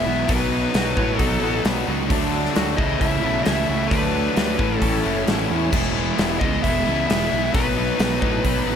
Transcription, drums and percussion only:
0.29 kick, open hi-hat
0.74 snare, open hi-hat
0.97 kick
1.19 kick, open hi-hat
1.65 snare, open hi-hat
2.10 kick, open hi-hat
2.45 snare
2.56 snare, open hi-hat
2.78 kick
3.01 kick, open hi-hat
3.46 snare, open hi-hat
3.91 kick, open hi-hat
4.36 snare, open hi-hat
4.59 kick
4.82 kick, open hi-hat
5.27 snare, open hi-hat
5.73 kick, crash
6.18 snare, open hi-hat
6.41 kick
6.64 kick, open hi-hat
7.10 snare, open hi-hat
7.54 kick, open hi-hat
7.99 snare, open hi-hat
8.22 kick
8.44 kick, open hi-hat

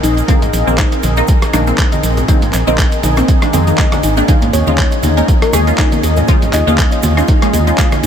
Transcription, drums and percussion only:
0.03 open hi-hat, shaker
0.17 closed hi-hat, shaker
0.28 kick, closed hi-hat, high conga, shaker
0.42 closed hi-hat, low conga, shaker
0.53 open hi-hat, shaker
0.67 high conga, shaker
0.78 kick, clap, closed hi-hat, shaker
0.92 closed hi-hat, shaker
1.03 open hi-hat, high conga, shaker
1.17 closed hi-hat, shaker
1.28 kick, closed hi-hat, shaker
1.42 cross-stick, closed hi-hat, shaker
1.53 cross-stick, open hi-hat, high conga, shaker
1.67 closed hi-hat, shaker
1.78 kick, clap, closed hi-hat, shaker
1.92 closed hi-hat, high conga, shaker
2.03 open hi-hat, shaker
2.17 closed hi-hat, low conga, shaker
2.28 kick, closed hi-hat, high conga, shaker
2.42 closed hi-hat, low conga, shaker
2.53 clap, open hi-hat, shaker
2.67 high conga, shaker
2.78 kick, clap, closed hi-hat, shaker
2.92 closed hi-hat, shaker
3.03 open hi-hat, high conga, shaker
3.17 cross-stick, closed hi-hat, shaker
3.28 kick, closed hi-hat, shaker
3.42 cross-stick, closed hi-hat, shaker
3.53 open hi-hat, high conga, shaker
3.67 closed hi-hat, shaker
3.78 kick, clap, closed hi-hat, shaker
3.92 cross-stick, closed hi-hat, high conga, shaker
4.03 open hi-hat, shaker
4.17 closed hi-hat, shaker
4.28 kick, closed hi-hat, high conga, shaker
4.42 closed hi-hat, low conga, shaker
4.53 open hi-hat, shaker
4.66 high conga, shaker
4.78 kick, clap, closed hi-hat, shaker
4.92 closed hi-hat, shaker
5.03 open hi-hat, high conga, shaker
5.17 closed hi-hat, shaker
5.28 kick, closed hi-hat, shaker
5.42 cross-stick, closed hi-hat, shaker
5.53 cross-stick, open hi-hat, high conga, shaker
5.67 closed hi-hat, shaker
5.78 kick, clap, closed hi-hat, shaker
5.92 closed hi-hat, high conga, shaker
6.03 open hi-hat, shaker
6.16 closed hi-hat, low conga, shaker
6.28 kick, closed hi-hat, high conga, shaker
6.42 closed hi-hat, low conga, shaker
6.53 clap, open hi-hat, shaker
6.66 high conga, shaker
6.78 kick, clap, closed hi-hat, shaker
6.91 closed hi-hat, shaker
7.03 open hi-hat, high conga, shaker
7.17 cross-stick, closed hi-hat, shaker
7.28 kick, closed hi-hat, shaker
7.42 cross-stick, closed hi-hat, shaker
7.53 open hi-hat, high conga, shaker
7.67 closed hi-hat, shaker
7.78 kick, clap, closed hi-hat, shaker
7.92 cross-stick, closed hi-hat, high conga, shaker
8.03 open hi-hat

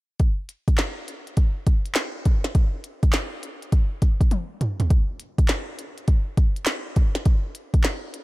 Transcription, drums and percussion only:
0.20 kick, closed hi-hat
0.49 closed hi-hat
0.68 kick, closed hi-hat
0.78 snare, clap, closed hi-hat
1.08 closed hi-hat
1.27 closed hi-hat
1.37 kick, closed hi-hat
1.67 kick, closed hi-hat
1.86 closed hi-hat
1.95 snare, clap, closed hi-hat
2.25 kick, closed hi-hat
2.44 snare, closed hi-hat
2.55 kick, closed hi-hat
2.84 closed hi-hat
3.03 kick, closed hi-hat
3.13 snare, clap, closed hi-hat
3.43 closed hi-hat
3.62 closed hi-hat
3.72 kick, closed hi-hat
4.02 kick, closed hi-hat
4.21 kick, closed hi-hat
4.31 closed hi-hat, high tom
4.61 closed hi-hat, mid tom
4.80 closed hi-hat, floor tom
4.90 kick, closed hi-hat
5.20 closed hi-hat
5.38 kick, closed hi-hat
5.48 snare, clap, closed hi-hat
5.79 closed hi-hat
5.98 closed hi-hat
6.08 kick, closed hi-hat
6.37 kick, closed hi-hat
6.56 closed hi-hat
6.66 snare, clap, closed hi-hat
6.96 kick, closed hi-hat
7.15 snare, closed hi-hat
7.25 kick, closed hi-hat
7.55 closed hi-hat
7.74 kick, closed hi-hat
7.84 snare, clap, closed hi-hat
8.14 closed hi-hat

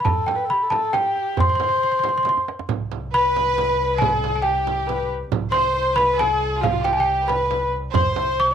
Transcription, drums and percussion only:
0.05 frame drum, tombak dum
0.28 tombak tek, frame drum
0.51 tombak ka
0.72 tombak tek, frame drum
0.94 tombak tek, frame drum
1.16 tombak ka
1.37 frame drum, tombak dum
1.60 tombak tek, frame drum
1.72 tombak ka
2.04 tombak tek, frame drum
2.25 tombak tek, frame drum
2.37 tombak ka
2.48 tombak tek
2.59 tombak ka
2.69 frame drum
2.92 frame drum
3.36 frame drum
3.58 frame drum
4.02 frame drum
4.24 frame drum
4.67 frame drum
4.89 frame drum
5.32 frame drum
5.54 frame drum
5.98 frame drum
6.21 frame drum
6.64 frame drum
6.85 frame drum
7.29 frame drum
7.51 frame drum
7.94 frame drum, tombak dum
8.16 tombak tek, frame drum

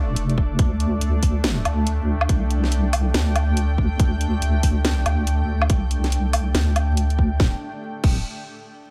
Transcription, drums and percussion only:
0.16 closed hi-hat
0.30 closed hi-hat
0.38 kick
0.59 kick, closed hi-hat
0.80 closed hi-hat
1.01 closed hi-hat
1.23 kick, open hi-hat
1.44 snare, closed hi-hat
1.65 closed hi-hat, low woodblock
1.87 closed hi-hat
2.21 low woodblock
2.29 kick, closed hi-hat
2.51 closed hi-hat
2.64 snare
2.72 closed hi-hat
2.93 open hi-hat, low woodblock
3.14 snare, closed hi-hat
3.36 closed hi-hat, low woodblock
3.57 closed hi-hat
3.78 kick
3.99 kick, closed hi-hat
4.21 closed hi-hat
4.42 closed hi-hat
4.63 kick, open hi-hat
4.85 snare, closed hi-hat
5.06 closed hi-hat, low woodblock
5.27 closed hi-hat
5.62 low woodblock
5.70 kick, closed hi-hat
5.91 closed hi-hat
6.04 snare, closed hi-hat
6.12 closed hi-hat
6.33 open hi-hat, low woodblock
6.55 snare, closed hi-hat
6.76 closed hi-hat, low woodblock
6.97 closed hi-hat
7.10 closed hi-hat
7.19 kick
7.40 kick, snare
8.04 kick, crash

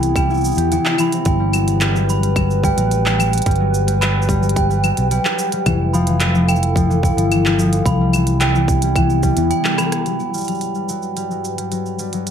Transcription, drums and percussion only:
0.03 closed hi-hat, cabasa
0.16 kick, closed hi-hat, cabasa, claves
0.30 cabasa
0.34 cabasa
0.37 cabasa
0.41 cabasa
0.45 cabasa
0.48 cabasa
0.51 cabasa
0.55 closed hi-hat, cabasa
0.58 cabasa
0.72 closed hi-hat, cabasa
0.85 clap, cabasa
0.98 cabasa, claves
1.12 closed hi-hat, cabasa
1.25 kick, closed hi-hat, cabasa
1.53 cabasa, claves
1.68 closed hi-hat, cabasa
1.81 clap, closed hi-hat, cabasa
1.96 cabasa
2.10 cabasa
2.23 closed hi-hat, cabasa
2.36 kick, closed hi-hat, cabasa, claves
2.51 cabasa
2.64 kick, cabasa
2.78 closed hi-hat, cabasa
2.91 closed hi-hat, cabasa
3.06 clap, cabasa
3.20 cabasa, claves
3.33 closed hi-hat, cabasa
3.38 closed hi-hat
3.42 closed hi-hat
3.46 kick, closed hi-hat, cabasa
3.51 closed hi-hat
3.56 closed hi-hat
3.74 cabasa
3.88 closed hi-hat, cabasa
4.02 clap, closed hi-hat, cabasa, claves
4.22 cabasa
4.29 kick, cabasa
4.43 cabasa
4.49 closed hi-hat
4.56 kick, closed hi-hat, cabasa
4.71 cabasa
4.84 cabasa, claves
4.97 closed hi-hat, cabasa
5.11 closed hi-hat, cabasa
5.25 clap, cabasa
5.39 cabasa
5.52 closed hi-hat, cabasa
5.66 kick, closed hi-hat, cabasa, claves
5.94 cabasa
6.07 closed hi-hat, cabasa
6.20 clap, closed hi-hat, cabasa
6.35 cabasa
6.49 cabasa, claves
6.56 cabasa
6.63 closed hi-hat
6.76 kick, closed hi-hat, cabasa
6.91 cabasa
7.03 kick, cabasa
7.18 closed hi-hat, cabasa
7.32 closed hi-hat, cabasa, claves
7.46 clap, cabasa
7.59 cabasa
7.73 closed hi-hat, cabasa
7.86 kick, closed hi-hat, cabasa
8.13 cabasa, claves
8.27 closed hi-hat, cabasa
8.41 clap, closed hi-hat, cabasa
8.55 cabasa
8.68 kick, cabasa
8.82 closed hi-hat, cabasa
8.96 kick, closed hi-hat, cabasa, claves
9.10 cabasa
9.23 kick, cabasa
9.37 closed hi-hat, cabasa
9.51 closed hi-hat, cabasa
9.65 clap, cabasa
9.78 cross-stick, cabasa, claves
9.92 cross-stick, closed hi-hat, cabasa
10.06 closed hi-hat, cabasa
10.20 cabasa
10.34 cabasa
10.38 cabasa
10.41 cabasa
10.44 closed hi-hat, cabasa
10.48 cabasa
10.51 cabasa
10.55 cabasa
10.58 closed hi-hat, cabasa
10.61 cabasa
10.75 cabasa
10.89 cabasa
11.02 cabasa
11.17 closed hi-hat, cabasa
11.31 cabasa
11.45 cabasa
11.58 closed hi-hat, cabasa
11.72 closed hi-hat, cabasa
11.86 cabasa
11.99 cabasa
12.13 closed hi-hat, cabasa
12.27 closed hi-hat, cabasa

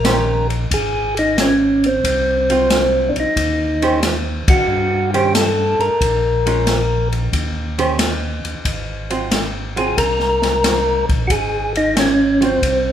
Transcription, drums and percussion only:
0.05 snare, hi-hat pedal, ride
0.50 ride
0.71 kick, ride
1.17 ride
1.38 snare, hi-hat pedal, ride
1.84 ride
2.04 kick, ride
2.50 ride
2.70 snare, hi-hat pedal, ride
3.16 ride
3.36 kick, ride
3.82 ride
4.03 snare, hi-hat pedal, ride
4.48 kick, ride
5.14 ride
5.35 snare, hi-hat pedal, ride
5.80 ride
6.01 kick, ride
6.47 ride
6.67 snare, hi-hat pedal, ride
7.12 ride
7.33 kick, ride
7.79 ride
7.99 snare, hi-hat pedal, ride
8.45 ride
8.65 kick, ride
9.10 ride
9.31 snare, hi-hat pedal, ride
9.77 ride
9.98 kick, ride
10.20 snare
10.42 snare, ride
10.64 snare, hi-hat pedal, ride
11.09 kick, ride
11.30 kick, ride
11.75 ride
11.97 snare, hi-hat pedal, ride
12.42 ride
12.62 kick, ride

